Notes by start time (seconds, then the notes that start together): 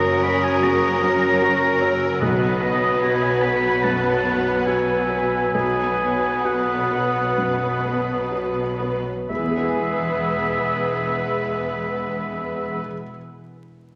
Already playing: F#1 F#2 C#3 F#3 C#4 F#4 A#4 C#5 F#5 A#5 D#6
0.04 C#5
0.23 C#5 F#5 B5
0.43 G#5 A#5
0.62 C#3 F#4 F#5 A#5
0.82 A#5
1.01 C#4 A#4 F#5
1.42 F#4 C#6
1.61 F#4
1.80 C#3 C#5 E6
2.01 C#4
2.20 B1 B2 F#3 B3 B4 D#5 F#6
2.42 F#3
2.61 B3 D#6
3.02 F#4 B4 G#6
3.22 G#5
3.42 B4 F#5 B5
3.63 B5
3.83 F#2 F#5 A5 F#6
4.05 B5
4.25 B3 F#5 F#6
4.65 F#4 C#5 G#5 E6
4.89 B3
5.10 F#3 B4
5.32 B3
5.53 B1 B2 F#3 B3 B4 G#5 D#6
5.77 F#3
6.00 B3
6.23 F#4
6.45 F#4 F#5
6.68 F#4
6.91 B4 F#5
7.15 B5
7.38 F#2 F#5
7.61 B5
7.85 B3 F#5
8.09 B4
8.31 F#4
8.80 F#3 B4
9.06 B3
9.29 E1 E2 E3 G#3 B3 G#4 B4 E5 E6
9.36 E3 B3
9.44 B3 E4
9.51 G#4
9.58 B4
9.65 G#5